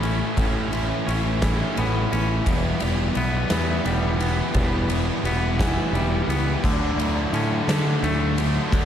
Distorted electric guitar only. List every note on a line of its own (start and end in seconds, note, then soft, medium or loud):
0.04 0.36 A2 medium
0.04 0.38 E3 medium
0.04 0.38 A3 medium
0.04 0.38 C#4 medium
0.04 0.40 E4 medium
0.37 0.70 A2 medium
0.37 0.72 E3 medium
0.37 0.71 A3 medium
0.37 0.72 C#4 medium
0.37 0.74 E4 medium
0.71 1.06 A2 medium
0.71 1.08 E3 medium
0.71 1.08 A3 medium
0.71 1.08 C#4 medium
0.71 1.09 E4 loud
1.07 1.40 A2 medium
1.07 1.42 E3 medium
1.07 1.41 A3 medium
1.07 1.42 C#4 medium
1.07 1.43 E4 medium
1.42 1.76 A2 medium
1.42 1.78 E3 medium
1.42 1.78 A3 medium
1.42 1.78 C#4 medium
1.42 1.79 E4 medium
1.77 2.11 A2 medium
1.77 2.12 E3 medium
1.77 2.12 A3 medium
1.77 2.13 C#4 medium
1.77 2.15 E4 medium
2.12 2.44 A2 medium
2.12 2.47 E3 medium
2.12 2.45 A3 medium
2.12 2.46 C#4 medium
2.12 2.48 E4 medium
2.47 2.81 E3 medium
2.47 2.82 G3 medium
2.47 2.82 B3 medium
2.47 2.83 E4 medium
2.81 3.15 E3 medium
2.81 3.15 G3 medium
2.81 3.16 B3 medium
2.81 3.16 E4 medium
3.15 3.49 E3 medium
3.15 3.50 G3 medium
3.15 3.50 B3 medium
3.15 3.51 E4 medium
3.50 3.83 E3 medium
3.50 3.84 G3 medium
3.50 3.84 B3 medium
3.50 3.85 E4 medium
3.84 4.19 E3 medium
3.84 4.19 G3 medium
3.84 4.20 B3 medium
3.84 4.21 E4 medium
4.20 4.52 E3 medium
4.20 4.53 G3 medium
4.20 4.54 B3 medium
4.20 4.55 E4 medium
4.53 4.87 E3 medium
4.53 4.89 G3 medium
4.53 4.89 B3 medium
4.53 4.89 E4 medium
4.88 5.23 E3 medium
4.88 5.23 G3 medium
4.88 5.24 B3 medium
4.88 5.25 E4 medium
5.24 5.58 E3 medium
5.24 5.59 G3 medium
5.24 5.59 B3 medium
5.24 5.60 E4 medium
5.59 5.93 E3 medium
5.59 5.93 G3 medium
5.59 5.94 B3 medium
5.59 5.95 E4 medium
5.94 6.27 E3 medium
5.94 6.28 G3 medium
5.94 6.29 B3 medium
5.94 6.29 E4 medium
6.28 6.61 E3 medium
6.28 6.62 G3 medium
6.28 6.62 B3 medium
6.28 6.62 E4 medium
6.64 6.97 D3 medium
6.64 6.98 F#3 medium
6.64 6.99 A3 medium
6.64 6.99 D4 loud
6.97 7.32 D3 medium
6.97 7.33 F#3 medium
6.97 7.34 A3 medium
6.97 7.34 D4 medium
7.33 7.67 D3 medium
7.33 7.68 F#3 medium
7.33 7.69 A3 medium
7.33 7.69 D4 loud
7.68 8.02 D3 medium
7.68 8.02 F#3 medium
7.68 8.03 A3 loud
7.68 8.04 D4 medium
8.03 8.37 D3 medium
8.03 8.37 F#3 medium
8.03 8.39 A3 loud
8.03 8.39 D4 loud
8.39 8.71 D3 medium
8.39 8.72 F#3 medium
8.39 8.73 A3 medium
8.39 8.74 D4 loud
8.72 8.85 D3 medium
8.72 8.85 F#3 medium
8.72 8.85 A3 medium
8.72 8.85 D4 medium